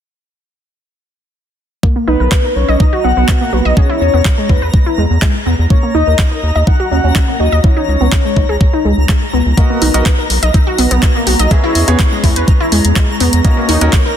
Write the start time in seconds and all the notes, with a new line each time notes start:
1.83 A#3 A#5 A#6, kick
1.96 A#3
2.08 B1 D#4 B4
2.20 B1 A#4
2.32 B4, kick, clap
2.44 A#4
2.56 B1 C#5
2.68 B1 D#5
2.80 D#4 D#5, kick
2.93 F#4
3.04 B1 B3 F#5
3.17 B1 B3
3.28 B3, kick, clap
3.41 A#3
3.53 B1 F#4 B4
3.65 B1 D#5
3.77 G#4 C#5, kick
3.89 E4
4.01 E2 C#5
4.14 E2 B3
4.25 kick, clap
4.38 G#3
4.49 E2 E4 B4, kick
4.62 E2 B4
4.74 kick
4.86 E4
4.98 E2 G#3
5.10 E2
5.22 G#3, kick, clap
5.46 E2 B3
5.59 E2
5.70 A#3 C#5, kick
5.83 A#3
5.95 D#2 D#4 D#5
6.07 D#2 A#4
6.19 C#5, kick, clap
6.31 A#4
6.43 D#2 D#5
6.55 D#2 D#5
6.67 D#4 F#5, kick
6.80 F#4
6.91 D#2 C#4 F#5
7.04 D#2 C#4
7.15 C#4, kick, clap
7.28 A#3
7.40 D#2 F#4 D#5
7.52 D#2 D#5
7.64 E4 C#5, kick
7.77 D#4
7.88 C#2
8.01 C#2 B3
8.12 kick, clap
8.25 G#3
8.36 C#2 D#4, kick
8.49 C#2 G#4
8.61 kick
8.73 D#4
8.85 C#2 G#3
8.98 C#2
9.09 G#3, kick, clap
9.33 C#2 B3
9.46 C#2
9.57 A#3 B3 F#4 A#4 D#5, kick, closed hi-hat
9.70 A#3
9.82 B1 D#4, open hi-hat
9.94 B1 B3 F#4 A#4 D#5, closed hi-hat
10.06 B4, kick, clap, closed hi-hat
10.19 A#4
10.30 B1, open hi-hat
10.43 B1 D#5, closed hi-hat
10.54 D#4, kick, closed hi-hat
10.67 F#4
10.78 B1 B3, open hi-hat
10.91 B1 B3, closed hi-hat
11.03 B3, kick, clap, closed hi-hat
11.15 A#3
11.27 B1 F#4, open hi-hat
11.39 B1 D#5, closed hi-hat
11.51 C#4 G#4 B4 E5, kick, closed hi-hat
11.64 E4
11.75 E2, open hi-hat
11.88 E2 B3 C#4 G#4 B4 C#5, closed hi-hat
11.99 kick, clap, closed hi-hat
12.12 G#3
12.24 E2 E4, kick, open hi-hat
12.36 E2 B4, closed hi-hat
12.48 kick, closed hi-hat
12.60 E4
12.72 E2 G#3, open hi-hat
12.85 E2, closed hi-hat
12.96 G#3, kick, clap, closed hi-hat
13.20 E2 B3, open hi-hat
13.33 E2, closed hi-hat
13.45 A#3 C#4 F#4 A#4 D#5, kick, closed hi-hat
13.57 A#3
13.69 D#2 D#4, open hi-hat
13.81 D#2 C#4 F#4 A#4 D#5, closed hi-hat
13.93 C#5, kick, clap, closed hi-hat
14.06 A#4